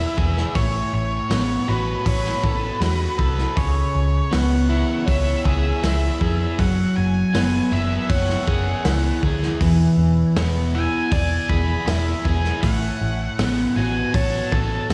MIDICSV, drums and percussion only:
0, 0, Header, 1, 2, 480
1, 0, Start_track
1, 0, Tempo, 755668
1, 351, Time_signature, 4, 2, 24, 8
1, 9487, End_track
2, 0, Start_track
2, 0, Title_t, "Drums"
2, 113, Note_on_c, 9, 36, 74
2, 177, Note_off_c, 9, 36, 0
2, 237, Note_on_c, 9, 38, 30
2, 301, Note_off_c, 9, 38, 0
2, 351, Note_on_c, 9, 36, 99
2, 352, Note_on_c, 9, 46, 52
2, 415, Note_off_c, 9, 36, 0
2, 416, Note_off_c, 9, 46, 0
2, 828, Note_on_c, 9, 46, 57
2, 831, Note_on_c, 9, 38, 111
2, 892, Note_off_c, 9, 46, 0
2, 895, Note_off_c, 9, 38, 0
2, 1309, Note_on_c, 9, 36, 104
2, 1309, Note_on_c, 9, 46, 62
2, 1372, Note_off_c, 9, 36, 0
2, 1373, Note_off_c, 9, 46, 0
2, 1433, Note_on_c, 9, 38, 27
2, 1496, Note_off_c, 9, 38, 0
2, 1547, Note_on_c, 9, 36, 83
2, 1611, Note_off_c, 9, 36, 0
2, 1787, Note_on_c, 9, 46, 54
2, 1790, Note_on_c, 9, 38, 112
2, 1851, Note_off_c, 9, 46, 0
2, 1853, Note_off_c, 9, 38, 0
2, 2025, Note_on_c, 9, 36, 75
2, 2089, Note_off_c, 9, 36, 0
2, 2150, Note_on_c, 9, 38, 30
2, 2213, Note_off_c, 9, 38, 0
2, 2267, Note_on_c, 9, 36, 104
2, 2269, Note_on_c, 9, 46, 51
2, 2330, Note_off_c, 9, 36, 0
2, 2333, Note_off_c, 9, 46, 0
2, 2746, Note_on_c, 9, 46, 53
2, 2749, Note_on_c, 9, 38, 114
2, 2810, Note_off_c, 9, 46, 0
2, 2812, Note_off_c, 9, 38, 0
2, 3225, Note_on_c, 9, 36, 111
2, 3226, Note_on_c, 9, 46, 57
2, 3288, Note_off_c, 9, 36, 0
2, 3290, Note_off_c, 9, 46, 0
2, 3464, Note_on_c, 9, 36, 82
2, 3528, Note_off_c, 9, 36, 0
2, 3705, Note_on_c, 9, 46, 56
2, 3707, Note_on_c, 9, 38, 107
2, 3768, Note_off_c, 9, 46, 0
2, 3771, Note_off_c, 9, 38, 0
2, 3944, Note_on_c, 9, 36, 72
2, 4008, Note_off_c, 9, 36, 0
2, 4185, Note_on_c, 9, 36, 104
2, 4186, Note_on_c, 9, 46, 56
2, 4248, Note_off_c, 9, 36, 0
2, 4249, Note_off_c, 9, 46, 0
2, 4665, Note_on_c, 9, 46, 60
2, 4667, Note_on_c, 9, 38, 106
2, 4728, Note_off_c, 9, 46, 0
2, 4731, Note_off_c, 9, 38, 0
2, 5143, Note_on_c, 9, 36, 109
2, 5143, Note_on_c, 9, 46, 59
2, 5206, Note_off_c, 9, 46, 0
2, 5207, Note_off_c, 9, 36, 0
2, 5268, Note_on_c, 9, 38, 29
2, 5331, Note_off_c, 9, 38, 0
2, 5383, Note_on_c, 9, 36, 85
2, 5447, Note_off_c, 9, 36, 0
2, 5619, Note_on_c, 9, 46, 55
2, 5622, Note_on_c, 9, 38, 102
2, 5683, Note_off_c, 9, 46, 0
2, 5686, Note_off_c, 9, 38, 0
2, 5862, Note_on_c, 9, 36, 75
2, 5926, Note_off_c, 9, 36, 0
2, 5987, Note_on_c, 9, 38, 30
2, 6051, Note_off_c, 9, 38, 0
2, 6103, Note_on_c, 9, 36, 100
2, 6104, Note_on_c, 9, 46, 56
2, 6167, Note_off_c, 9, 36, 0
2, 6167, Note_off_c, 9, 46, 0
2, 6581, Note_on_c, 9, 46, 53
2, 6584, Note_on_c, 9, 38, 112
2, 6645, Note_off_c, 9, 46, 0
2, 6647, Note_off_c, 9, 38, 0
2, 7062, Note_on_c, 9, 36, 111
2, 7063, Note_on_c, 9, 46, 56
2, 7125, Note_off_c, 9, 36, 0
2, 7127, Note_off_c, 9, 46, 0
2, 7302, Note_on_c, 9, 36, 86
2, 7365, Note_off_c, 9, 36, 0
2, 7542, Note_on_c, 9, 46, 52
2, 7544, Note_on_c, 9, 38, 106
2, 7605, Note_off_c, 9, 46, 0
2, 7608, Note_off_c, 9, 38, 0
2, 7782, Note_on_c, 9, 36, 68
2, 7846, Note_off_c, 9, 36, 0
2, 7905, Note_on_c, 9, 38, 30
2, 7969, Note_off_c, 9, 38, 0
2, 8022, Note_on_c, 9, 36, 100
2, 8023, Note_on_c, 9, 46, 52
2, 8085, Note_off_c, 9, 36, 0
2, 8087, Note_off_c, 9, 46, 0
2, 8504, Note_on_c, 9, 46, 61
2, 8507, Note_on_c, 9, 38, 110
2, 8568, Note_off_c, 9, 46, 0
2, 8570, Note_off_c, 9, 38, 0
2, 8982, Note_on_c, 9, 46, 60
2, 8983, Note_on_c, 9, 36, 113
2, 9046, Note_off_c, 9, 46, 0
2, 9047, Note_off_c, 9, 36, 0
2, 9225, Note_on_c, 9, 36, 89
2, 9289, Note_off_c, 9, 36, 0
2, 9465, Note_on_c, 9, 46, 60
2, 9467, Note_on_c, 9, 38, 105
2, 9487, Note_off_c, 9, 38, 0
2, 9487, Note_off_c, 9, 46, 0
2, 9487, End_track
0, 0, End_of_file